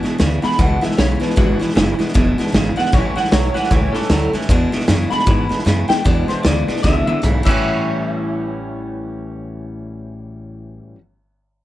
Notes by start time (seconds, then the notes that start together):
0.03 E2 B2 E3 G#3 D4 E4, muted upright bass stroke, snare
0.18 D2 E2 C#3 E3 G#3 D4 E4, snare, hi-hat pedal
0.42 E2 B2 E3 G#3 D4 E4 B5, snare
0.51 snare
0.59 C#2 E2 B2 E3 G#3 D4 E4 F#5, kick, snare
0.81 E2 B2 E3 G#3 D4 E4 E5, snare
0.91 snare
0.97 B1 E2 C#3 E3 G#3 D4 E4 C#5, snare, hi-hat pedal
1.20 E2 B2 E3 G#3 D4 E4 B4, muted upright bass stroke, snare
1.30 snare
1.36 G#1 E2 B2 E3 G#3 D4 E4 F#4, kick, snare
1.59 E2 B2 E3 G#3 D4 E4, muted upright bass stroke, snare
1.69 snare
1.75 F#1 E2 C#3 E3 G#3 D4 E4, snare, hi-hat pedal
1.99 E2 B2 E3 G#3 D4 E4, muted upright bass stroke, snare
2.08 snare
2.14 E1 E2 B2 E3 G#3 D4 E4, kick, snare
2.38 E2 B2 E3 G#3 D4 E4, muted upright bass stroke, snare
2.47 snare
2.52 G#1 E2 C#3 E3 G#3 D4 E4, snare, hi-hat pedal
2.76 E2 B2 E3 G#3 D4 E4 F#5, muted upright bass stroke, snare
2.85 snare
2.92 A1 A2 E3 G3 C#4 E4 C#5, kick, snare
3.15 A2 E3 G3 C#4 E4 F#5, muted upright bass stroke, snare
3.25 snare
3.31 B1 A2 E3 F#3 G3 C#4 E4 C#5, snare, hi-hat pedal
3.54 A2 E3 G3 C#4 E4 F#5, muted upright bass stroke, snare
3.63 snare
3.70 C#2 A2 E3 G3 C#4 E4 C#5, kick, snare
3.92 A2 E3 C#4 E4 A4, muted upright bass stroke, snare
3.97 G3
4.02 snare
4.09 D2 A2 E3 F#3 G3 C#4 E4, snare, hi-hat pedal
4.33 A2 E3 G3 C#4 E4, muted upright bass stroke, snare
4.41 snare
4.49 E2 B2 E3 G#3 D4 E4, kick, snare
4.72 E2 B2 E3 G#3 D4 E4, muted upright bass stroke, snare
4.80 snare
4.88 E2 F#2 C#3 E3 G#3 D4 E4, snare, hi-hat pedal
5.10 E2 B2 E3 G#3 D4 E4 B5, muted upright bass stroke, snare
5.19 snare
5.26 E2 G#2 B2 E3 G#3 D4 E4, kick, snare
5.49 E2 B2 E3 G#3 D4 E4, muted upright bass stroke, snare
5.59 snare
5.65 E2 F#2 C#3 E3 G#3 D4 E4, snare, hi-hat pedal
5.88 E2 B2 E3 G#3 D4 E4 G5, muted upright bass stroke, snare
6.04 E2 B2 E3 G#3 D4 E4 D5, kick, snare
6.28 E2 B2 E3 G#3 D4 E4 C5, muted upright bass stroke, snare
6.43 D2 E2 C#3 E3 G#3 D4 E4 D5, snare, hi-hat pedal
6.68 E2 B2 E3 G#3 D4 E4, snare
6.76 snare
6.83 C#2 E2 B2 D3 E3 G#3 D4 E4 E5, kick, snare
7.06 E2 D3 E3 G#3 D4 E4 E5, muted upright bass stroke, high tom
7.22 B1 E2 C#3 E3 G#3 D4 E4, hi-hat pedal, mid tom
7.43 A1 A2 E3 G3 E5, kick, crash
7.47 G3 C#4 F#4